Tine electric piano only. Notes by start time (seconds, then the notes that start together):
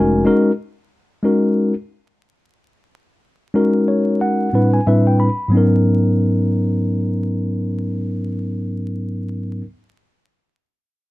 Already playing: G#3 C#4 D#4 F#4 A#4 G#5
0.25 G#3 C#4 D#4 F#4 A#4
1.23 G#3 C#4 D#4 F#4 A#4
3.54 G#3 C#4 D#4 F#4 A#4
3.88 C#5
4.21 F#5
4.53 A2 G3 C4 D4 E4 B4
4.74 G#5
4.86 A2 G3 C4 D4 E4 B4 E5
5.07 G5
5.20 B5
5.48 G#2 F#3 B3
5.53 C#4 D#4
5.57 A#4